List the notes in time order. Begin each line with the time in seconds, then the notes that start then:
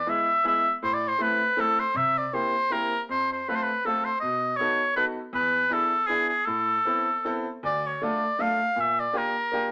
Already playing: D5
0.06 G#3 B3 E4 G#4 E5
0.44 G#3 B3 E4 G#4 E5
0.82 A2 C5
0.93 D5
1.08 C5
1.18 A3 C4 E4 A4 B4
1.57 A3 C4 E4 A4
1.80 C5
1.94 C3 E5
2.18 D5
2.33 A#3 C4 E4 G4 C5
2.70 A#3 C4 E4 G4 A#4
3.09 F2 C5
3.32 C5
3.48 A3 C4 F4 A4 B4
3.55 C5
3.63 B4
3.85 A3 C4 F4 A4
4.04 C5
4.20 B2 D#5
4.56 B3 D#4 F#4 C#5
4.61 A4
4.95 B3 D#4 F#4 A4 B4
5.33 E2 B4
5.69 B3 D4 E4 G#4 A4
6.07 B3 D4 E4 G#4
6.29 G#4
6.45 A2 A4
6.85 B3 C4 E4 A4
7.24 B3 C4 E4 A4
7.63 D2 D5
7.86 C#5
8.02 A3 D4 F4 A4 D5
8.38 A3 D4 F4 A4 F5
8.76 A#2 E5
9.00 D5
9.13 A#3 D4 F4 G4
9.17 A#4
9.52 A#3 D4 F4 G4